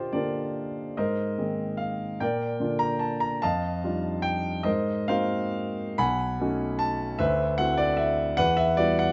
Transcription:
0.00 0.98 A#2 soft
0.00 0.13 D3 soft
0.00 0.13 A#3 soft
0.00 0.14 D4 soft
0.00 0.14 F4 medium
0.00 0.14 G4 medium
0.00 0.14 A#4 medium
0.00 0.12 C5 medium
0.00 0.13 D5 medium
0.00 0.97 D#5 medium
0.00 0.98 F5 medium
0.00 0.97 G5 medium
0.13 0.92 D3 soft
0.13 0.92 A#3 soft
0.13 0.92 D4 soft
0.13 0.92 F4 soft
0.13 0.92 G4 soft
0.13 0.93 A#4 soft
0.13 0.96 D5 medium
0.97 1.37 G#2 soft
0.97 1.76 A#4 medium
0.97 1.76 C5 medium
0.97 1.79 D#5 medium
1.38 2.16 D#3 soft
1.38 2.16 A#3 soft
1.38 2.16 C4 soft
1.38 2.16 G#4 soft
1.77 2.19 F5 medium
2.20 2.59 A#2 soft
2.20 2.77 A#4 medium
2.20 2.77 D5 medium
2.20 2.81 G5 medium
2.60 3.39 D3 soft
2.60 3.39 A#3 soft
2.60 3.39 D4 soft
2.60 3.39 F4 soft
2.79 3.00 A#5 medium
2.99 3.21 A5 medium
3.20 3.42 A#5 medium
3.42 3.83 F2 medium
3.42 4.21 D#5 medium
3.42 4.21 F5 medium
3.42 4.24 A5 medium
3.84 4.61 G3 soft
3.84 4.61 D4 soft
3.84 4.61 D#4 soft
3.84 4.61 F4 soft
4.22 4.64 G5 medium
4.63 5.07 G#2 medium
4.63 5.05 A#4 medium
4.63 5.06 C5 medium
4.63 5.08 D#5 medium
5.08 5.95 A#3 soft
5.08 5.95 C4 soft
5.08 5.95 D#4 soft
5.08 5.95 F#4 soft
5.08 5.95 A#4 medium
5.08 5.95 C5 medium
5.08 5.98 F5 medium
5.98 6.39 B1 medium
5.98 6.76 F#5 medium
5.98 6.76 G#5 medium
5.98 6.80 B5 loud
6.40 7.16 A3 soft
6.40 7.16 C#4 soft
6.40 7.16 D#4 soft
6.40 7.17 F#4 medium
6.79 7.19 A5 medium
7.19 7.58 D2 medium
7.19 7.56 B4 medium
7.19 7.56 C5 medium
7.19 7.58 E5 medium
7.58 8.34 A3 soft
7.58 8.34 C4 soft
7.58 8.34 E4 soft
7.58 8.34 F#4 soft
7.58 7.78 F#5 medium
7.77 7.98 D5 loud
7.97 8.37 E5 medium
8.37 8.77 E2 medium
8.37 8.57 B4 medium
8.37 8.58 F#5 loud
8.57 8.77 E5 medium
8.77 9.12 G3 soft
8.77 9.12 B3 soft
8.77 9.12 E4 soft
8.77 9.12 F#4 soft
8.77 8.98 D5 loud
8.99 9.12 F#5 medium

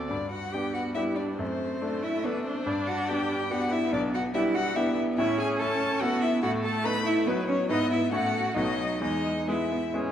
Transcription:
0.00 0.13 D2 soft
0.00 0.10 C4 medium
0.00 0.14 F#4 soft
0.00 0.14 A4 soft
0.00 0.10 D5 soft
0.09 0.53 G2 soft
0.09 0.29 D4 medium
0.09 0.30 D5 soft
0.30 0.54 F#4 medium
0.30 0.55 F#5 soft
0.52 0.93 B3 soft
0.52 0.94 B3 soft
0.52 0.93 D4 soft
0.52 0.75 G4 medium
0.52 0.93 G4 soft
0.52 0.73 G5 soft
0.73 0.94 F#4 medium
0.73 0.82 F#5 soft
0.95 1.41 G3 soft
0.95 1.35 B3 soft
0.95 1.35 D4 soft
0.95 1.18 E4 medium
0.95 1.36 G4 soft
0.95 1.03 E5 medium
1.16 1.40 D4 medium
1.16 1.24 D5 soft
1.37 1.80 F#2 soft
1.37 1.81 A3 soft
1.37 2.04 C4 medium
1.37 2.04 C5 soft
1.82 2.26 A3 soft
1.82 2.21 A3 soft
1.82 2.21 D4 soft
1.82 2.21 A4 soft
2.03 2.26 E4 medium
2.03 2.26 E5 soft
2.24 2.63 A3 soft
2.24 2.46 B3 medium
2.24 3.49 D4 medium
2.24 2.63 D4 soft
2.24 2.63 A4 soft
2.24 2.45 B4 soft
2.45 2.65 C4 soft
2.45 2.69 C5 soft
2.66 3.07 G2 soft
2.66 2.74 D4 medium
2.66 2.89 D5 medium
2.87 3.10 F#4 medium
2.87 3.10 F#5 medium
3.08 3.47 B3 soft
3.08 3.48 D4 soft
3.08 3.52 G4 medium
3.08 3.48 G4 soft
3.08 3.53 G5 medium
3.50 4.33 B3 medium
3.50 3.89 B3 soft
3.50 3.89 D4 soft
3.50 3.73 F#4 medium
3.50 3.89 G4 soft
3.50 3.74 F#5 medium
3.71 3.94 E4 medium
3.71 3.93 E5 medium
3.92 4.33 B1 medium
3.92 4.14 D4 medium
3.92 4.01 D5 medium
4.14 4.22 F#4 medium
4.14 4.22 F#5 medium
4.34 4.75 G3 soft
4.34 4.72 B3 soft
4.34 4.72 D4 soft
4.34 4.57 E4 medium
4.34 4.73 G4 soft
4.34 4.42 E5 medium
4.55 4.77 F#4 medium
4.55 4.77 F#5 medium
4.76 5.19 B3 medium
4.76 5.14 B3 soft
4.76 5.14 D4 soft
4.76 4.97 E4 medium
4.76 5.15 G4 soft
4.76 4.97 E5 medium
5.17 5.59 A2 medium
5.17 6.03 C#4 medium
5.17 5.39 E4 medium
5.17 5.38 E5 medium
5.38 5.61 G#4 medium
5.38 5.48 G#5 medium
5.59 5.98 C#4 soft
5.59 5.98 E4 soft
5.59 6.02 A4 medium
5.59 5.99 A4 soft
5.59 6.02 A5 medium
6.01 6.43 B3 medium
6.01 6.40 C#4 soft
6.01 6.40 E4 soft
6.01 6.24 F#4 medium
6.01 6.40 A4 soft
6.01 6.21 F#5 medium
6.21 6.42 E4 medium
6.21 6.42 E5 medium
6.42 6.84 A2 medium
6.42 7.29 A3 medium
6.42 6.50 F#4 medium
6.42 6.50 F#5 medium
6.63 6.85 A4 medium
6.63 6.87 A5 medium
6.84 7.23 B3 soft
6.84 7.23 D#4 soft
6.84 7.04 B4 medium
6.84 7.23 B4 soft
6.84 7.08 B5 medium
7.05 7.26 E4 medium
7.05 7.29 E5 medium
7.26 7.72 F#3 medium
7.26 7.34 B3 medium
7.26 7.66 B3 soft
7.26 7.66 D#4 soft
7.26 7.48 B4 medium
7.26 7.67 B4 soft
7.48 7.56 C#4 medium
7.48 7.70 C#5 medium
7.69 8.11 G#2 medium
7.69 8.09 B3 soft
7.69 8.12 B3 medium
7.69 7.90 D#4 medium
7.69 8.09 E4 soft
7.69 8.09 B4 soft
7.69 7.91 D#5 medium
7.91 7.99 E4 medium
7.91 8.12 E5 medium
8.12 8.55 A2 medium
8.12 8.55 A3 medium
8.12 8.53 A3 soft
8.12 8.53 C#4 soft
8.12 8.56 F#4 medium
8.12 8.53 F#4 soft
8.12 8.55 F#5 medium
8.55 9.00 B1 medium
8.55 9.01 F#3 medium
8.55 8.98 A3 soft
8.55 8.98 B3 soft
8.55 9.01 D#4 medium
8.55 8.98 F#4 soft
8.55 9.01 D#5 medium
9.01 9.47 E2 medium
9.01 9.43 G#3 medium
9.01 9.50 D#4 medium
9.01 9.48 D#5 medium
9.47 9.55 G#3 soft
9.47 9.90 G#3 soft
9.47 9.90 B3 soft
9.47 9.94 E4 medium
9.47 9.90 G#4 soft
9.47 9.94 E5 medium
9.71 9.79 B3 medium
9.93 10.12 G#3 soft
9.93 10.12 B3 soft
9.93 10.12 C#4 medium
9.93 10.12 G#4 soft

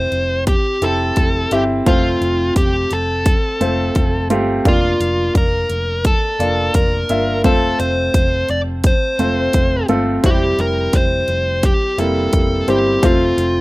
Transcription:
0.00 0.18 C4 medium
0.00 0.18 E4 medium
0.00 0.18 G4 medium
0.00 0.43 C5 medium
0.00 0.18 E5 medium
0.12 0.55 F1 medium
0.12 closed hi-hat soft
0.47 0.84 G4 medium
0.47 kick medium
0.47 closed hi-hat medium
0.82 1.10 F1 medium
0.82 1.37 C4 medium
0.82 1.37 E4 soft
0.82 1.37 G4 medium
0.82 1.37 A4 medium
0.82 1.55 A4 medium
0.82 closed hi-hat medium
1.16 1.45 F1 medium
1.16 kick medium
1.16 closed hi-hat medium
1.51 1.80 G1 medium
1.51 1.79 C4 medium
1.51 1.79 E4 medium
1.51 1.79 G4 medium
1.51 1.62 G4 medium
1.51 1.80 E5 medium
1.51 closed hi-hat medium
1.86 2.15 F1 medium
1.86 2.97 A3 medium
1.86 2.97 C4 medium
1.86 2.97 F4 medium
1.86 2.53 F4 medium
1.86 2.97 C5 medium
1.86 kick loud
1.86 closed hi-hat medium
2.21 2.50 F1 medium
2.21 closed hi-hat medium
2.56 2.85 F1 medium
2.56 2.93 G4 medium
2.56 kick medium
2.56 closed hi-hat medium
2.91 3.34 F1 medium
2.91 4.28 A4 medium
2.91 closed hi-hat soft
3.26 kick loud
3.26 closed hi-hat medium
3.60 3.89 F1 medium
3.60 4.16 A3 medium
3.60 4.16 C4 medium
3.60 4.16 F4 soft
3.60 4.16 C5 medium
3.60 closed hi-hat medium
3.95 4.30 F1 medium
3.95 kick medium
3.95 closed hi-hat medium
4.30 4.59 G1 medium
4.30 4.58 A3 medium
4.30 4.58 C4 medium
4.30 4.58 F4 medium
4.30 4.58 G4 medium
4.30 closed hi-hat medium
4.65 4.94 F1 medium
4.65 5.76 A#3 medium
4.65 5.76 D4 medium
4.65 5.76 F4 medium
4.65 5.33 F4 medium
4.65 5.76 D5 medium
4.65 kick medium
4.65 closed hi-hat medium
5.00 5.29 F1 medium
5.00 closed hi-hat medium
5.35 5.64 F1 medium
5.35 6.06 A#4 medium
5.35 kick medium
5.35 closed hi-hat medium
5.70 6.13 F1 medium
5.70 closed hi-hat soft
6.05 6.75 A4 medium
6.05 kick loud
6.05 closed hi-hat medium
6.39 6.68 F1 medium
6.39 6.95 A#3 medium
6.39 6.95 D4 soft
6.39 6.95 F4 medium
6.39 6.95 D5 medium
6.39 closed hi-hat medium
6.74 7.03 F1 medium
6.74 7.41 A#4 medium
6.74 kick medium
6.74 closed hi-hat medium
7.09 7.44 G1 medium
7.09 7.37 A#3 medium
7.09 7.37 D4 medium
7.09 7.37 F4 medium
7.09 7.38 E5 medium
7.09 closed hi-hat medium
7.44 7.73 F1 medium
7.44 8.55 A3 medium
7.44 8.55 C4 medium
7.44 8.55 F4 medium
7.44 7.80 A4 medium
7.44 8.55 C5 medium
7.44 kick medium
7.44 closed hi-hat medium
7.80 8.08 F1 medium
7.80 8.50 C5 medium
7.80 closed hi-hat medium
8.14 8.43 F1 medium
8.14 kick medium
8.14 closed hi-hat medium
8.49 8.92 F1 medium
8.49 8.60 D5 medium
8.49 closed hi-hat medium
8.84 9.86 C5 medium
8.84 kick loud
8.84 closed hi-hat medium
9.19 9.48 F1 medium
9.19 9.74 A3 medium
9.19 9.74 C4 soft
9.19 9.74 F4 soft
9.19 9.75 C5 medium
9.19 closed hi-hat medium
9.53 9.83 F1 medium
9.53 kick medium
9.53 closed hi-hat medium
9.89 10.18 G1 medium
9.89 10.16 A3 medium
9.89 10.16 C4 medium
9.89 10.17 F4 medium
9.89 10.17 A4 medium
9.89 closed hi-hat medium
10.24 10.52 F1 medium
10.24 11.34 G3 medium
10.24 11.34 C4 medium
10.24 11.34 E4 medium
10.24 10.61 G4 medium
10.24 11.34 C5 medium
10.24 kick loud
10.24 closed hi-hat medium
10.58 10.87 F1 medium
10.58 10.96 A#4 medium
10.58 closed hi-hat medium
10.93 11.22 F1 medium
10.93 11.66 C5 medium
10.93 kick medium
10.93 closed hi-hat medium
11.28 11.71 F1 medium
11.28 closed hi-hat medium
11.63 12.00 G4 medium
11.63 kick loud
11.63 closed hi-hat medium
11.98 12.27 F1 medium
11.98 12.53 G3 medium
11.98 12.54 A#3 medium
11.98 12.53 C4 soft
11.98 12.53 E4 medium
11.98 12.69 A4 medium
11.98 closed hi-hat medium
12.33 12.62 F1 medium
12.33 kick medium
12.33 closed hi-hat medium
12.68 12.96 G1 medium
12.68 12.95 G3 medium
12.68 12.95 C4 medium
12.68 12.96 E4 medium
12.68 13.05 G4 medium
12.68 12.96 C5 medium
12.68 closed hi-hat medium
13.03 13.31 F1 medium
13.03 13.61 A3 medium
13.03 13.61 C4 medium
13.03 13.61 F4 medium
13.03 13.61 C5 medium
13.03 kick medium
13.03 closed hi-hat medium
13.37 13.61 F1 medium
13.37 closed hi-hat medium

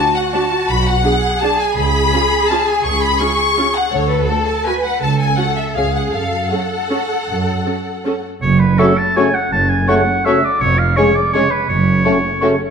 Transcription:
0.00 1.04 F#4 medium
0.00 0.15 A5 medium
0.15 0.23 F#5 medium
0.15 0.34 F#5 medium
0.33 0.41 D4 medium
0.33 0.41 F#4 medium
0.33 0.69 A5 medium
0.33 0.68 A5 medium
0.68 0.98 B1 medium
0.68 0.86 B5 medium
0.85 1.40 F#5 medium
0.85 1.42 F#5 medium
1.04 1.12 D4 soft
1.04 3.93 G#4 medium
1.04 1.12 G#4 medium
1.41 1.50 D4 medium
1.41 1.50 G#4 medium
1.41 1.59 A5 medium
1.41 1.60 A5 medium
1.59 1.76 G#5 medium
1.59 1.77 G#5 medium
1.77 2.06 C#2 medium
1.77 2.50 B5 medium
1.77 2.49 B5 loud
2.13 2.21 C#4 soft
2.13 2.21 F4 medium
2.50 2.59 C#4 medium
2.50 2.58 F4 medium
2.50 2.68 A5 medium
2.68 2.85 G#5 medium
2.84 3.14 C#2 medium
2.84 3.02 C#6 medium
3.02 3.20 B5 medium
3.02 3.21 B5 medium
3.20 3.28 C#4 soft
3.20 3.28 F4 medium
3.20 3.76 C#6 medium
3.57 3.65 C#4 medium
3.57 3.65 F4 medium
3.76 3.93 F#5 medium
3.93 4.23 D2 medium
3.93 4.65 A4 medium
3.93 4.10 C#5 medium
3.93 4.11 C#5 medium
4.10 4.29 B4 medium
4.28 4.37 A3 soft
4.28 4.37 F#4 soft
4.28 4.47 A4 medium
4.28 4.48 A4 medium
4.47 4.66 A5 medium
4.65 4.74 A3 medium
4.65 4.74 F#4 medium
4.65 5.01 B4 medium
4.65 4.84 G#5 medium
4.65 4.73 G#5 medium
4.84 5.01 F#5 medium
5.01 5.31 C#2 medium
5.01 5.36 A4 medium
5.01 5.09 A5 medium
5.01 5.19 A5 medium
5.19 5.37 G#5 medium
5.36 5.46 C#4 soft
5.36 5.46 F#4 soft
5.36 5.75 A4 medium
5.36 5.56 F#5 medium
5.36 5.57 F#5 medium
5.56 5.64 E5 medium
5.56 5.76 E5 medium
5.75 6.07 C#2 medium
5.75 5.84 C#4 soft
5.75 6.13 G#4 medium
5.75 5.84 G#4 medium
5.75 5.95 F5 medium
5.94 6.13 F#5 medium
5.94 6.02 F#5 medium
6.12 6.44 F#2 medium
6.12 8.24 A4 medium
6.12 6.51 F5 medium
6.51 6.60 C#4 soft
6.51 6.59 A4 soft
6.51 8.24 F#5 medium
6.51 8.25 F#5 medium
6.90 6.98 C#4 medium
6.90 6.98 A4 medium
7.29 7.60 F#2 medium
7.66 7.74 C#4 soft
7.66 7.74 A4 soft
8.06 8.14 C#4 medium
8.06 8.14 A4 medium
8.42 8.73 F#1 medium
8.42 8.72 F#2 medium
8.42 8.61 C#5 medium
8.60 8.80 B4 medium
8.78 8.93 C#3 medium
8.78 8.92 A3 medium
8.78 8.93 C#4 medium
8.78 8.88 C#4 soft
8.78 8.86 F#4 medium
8.78 8.93 F#4 medium
8.78 8.99 A4 medium
8.78 8.87 A4 medium
8.78 8.93 C#5 medium
8.78 8.86 C#6 medium
8.98 9.18 A5 medium
9.16 9.30 C#3 medium
9.16 9.30 A3 soft
9.16 9.30 A3 medium
9.16 9.30 C#4 medium
9.16 9.25 C#4 medium
9.16 9.25 F#4 soft
9.16 9.30 F#4 medium
9.16 9.26 A4 medium
9.16 9.30 C#5 medium
9.16 9.36 G#5 medium
9.16 9.23 C#6 medium
9.34 9.51 F#5 medium
9.52 9.82 F#1 medium
9.52 9.82 F#2 medium
9.52 9.71 A5 medium
9.69 9.88 G#5 medium
9.88 10.03 C#3 medium
9.88 10.02 A3 medium
9.88 9.97 C#4 medium
9.88 10.02 C#4 medium
9.88 9.97 F#4 medium
9.88 10.03 F#4 medium
9.88 9.97 A4 medium
9.88 10.02 C#5 medium
9.88 10.26 F#5 medium
9.88 9.95 C#6 medium
10.25 10.40 C#3 medium
10.25 10.39 A3 soft
10.25 10.40 A3 medium
10.25 10.34 C#4 medium
10.25 10.39 C#4 medium
10.25 10.35 F#4 medium
10.25 10.40 F#4 medium
10.25 10.34 A4 soft
10.25 10.39 C#5 medium
10.25 10.46 E5 medium
10.25 10.32 C#6 medium
10.44 10.62 D5 medium
10.61 10.91 F1 medium
10.61 10.91 F2 medium
10.61 10.80 C#5 medium
10.78 10.98 F5 medium
10.96 11.11 C#3 medium
10.96 11.11 G#3 medium
10.96 11.05 C#4 medium
10.96 11.11 C#4 medium
10.96 11.05 G#4 medium
10.96 11.11 G#4 soft
10.96 11.06 G#4 medium
10.96 11.17 C#5 medium
10.96 11.10 C#5 medium
10.96 11.03 C#6 medium
11.15 11.35 D5 medium
11.33 11.47 C#3 medium
11.33 11.47 G#3 medium
11.33 11.42 C#4 medium
11.33 11.48 C#4 medium
11.33 11.42 G#4 medium
11.33 11.42 G#4 soft
11.33 11.47 G#4 medium
11.33 11.52 C#5 medium
11.33 11.47 C#5 medium
11.33 11.40 C#6 medium
11.51 11.68 B4 medium
11.69 11.99 F#1 medium
11.69 11.99 F#2 medium
11.69 12.58 C#5 medium
12.04 12.19 C#3 medium
12.04 12.19 A3 medium
12.04 12.13 C#4 soft
12.04 12.18 C#4 medium
12.04 12.13 F#4 medium
12.04 12.19 F#4 medium
12.04 12.13 A4 medium
12.04 12.18 C#5 medium
12.04 12.11 C#6 medium
12.41 12.55 C#3 medium
12.41 12.55 A3 medium
12.41 12.54 C#4 medium
12.41 12.50 C#4 medium
12.41 12.54 F#4 medium
12.41 12.50 F#4 soft
12.41 12.50 A4 medium
12.41 12.54 C#5 medium
12.41 12.47 C#6 medium

